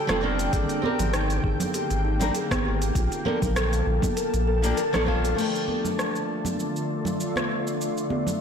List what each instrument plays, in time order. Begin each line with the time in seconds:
Already playing: ambient pad D3 A4 G5
0.07 sub bass F1, nylon-string guitar G3 D4 F4 A4, cross-stick, open hi-hat, high conga, low conga, cabasa
0.21 nylon-string guitar G3 A#3 C4 D4, kalimba F4
0.39 open hi-hat, cabasa
0.53 sub bass G#1, ambient pad A#3 C4, kalimba G#4, kick, open hi-hat, cabasa
0.69 open hi-hat, cabasa
0.82 nylon-string guitar C4 A#4 D5, kalimba G4, high conga
0.99 sub bass G#1, open hi-hat, low conga, cabasa
1.14 kalimba D#4, cross-stick, open hi-hat, cabasa
1.30 open hi-hat, cabasa
1.44 sub bass G#1, kalimba G#4, kick
1.60 open hi-hat, high conga, low conga, cabasa
1.74 kalimba G4, open hi-hat, cabasa
1.91 sub bass G#1, open hi-hat, cabasa
2.05 kalimba D#4
2.19 nylon-string guitar G3 C4 D4 A#4, open hi-hat, low conga, cabasa
2.35 kalimba G#4, open hi-hat, cabasa
2.51 sub bass G#1, kick, cross-stick, open hi-hat, high conga, cabasa
2.65 kalimba G4
2.82 open hi-hat, cabasa
2.95 sub bass A#1, kalimba F4, ambient pad A5, kick, open hi-hat, cabasa
3.12 open hi-hat, cabasa
3.25 nylon-string guitar F3 A#3 D4 A4, kalimba A#4, high conga
3.42 sub bass A#1, kick, open hi-hat, low conga, cabasa
3.56 kalimba A4, cross-stick, open hi-hat, cabasa
3.73 open hi-hat, cabasa
3.86 sub bass A#1, kalimba F4
4.02 kick, open hi-hat, high conga, low conga, cabasa
4.17 kalimba A#4, open hi-hat, cabasa
4.34 sub bass A#1, open hi-hat, cabasa
4.47 kalimba A4
4.62 nylon-string guitar F3 A#3 D4 G4, kalimba F4, open hi-hat, cabasa
4.77 kalimba A#4, open hi-hat, cabasa
4.93 sub bass A#1, nylon-string guitar F3 A#3 D4 A4, cross-stick, open hi-hat, high conga, low conga, cabasa
5.06 nylon-string guitar G3 D4 F4 A5, kalimba F5, kick
5.25 kalimba A4, open hi-hat, cabasa
5.35 ambient pad D3 A3 F4 D5, nylon-string guitar F3 A3 D4, crash, cabasa
5.40 nylon-string guitar G4
5.55 cabasa
5.68 high conga
5.85 low conga, cabasa
5.99 cross-stick, cabasa
6.16 cabasa
6.45 high conga, low conga, cabasa
6.60 cabasa
6.76 cabasa
7.05 low conga, cabasa
7.20 cabasa
7.36 cross-stick, high conga, cabasa
7.67 cabasa
7.81 ambient pad E4, cabasa
7.97 cabasa
8.10 high conga
8.27 low conga, cabasa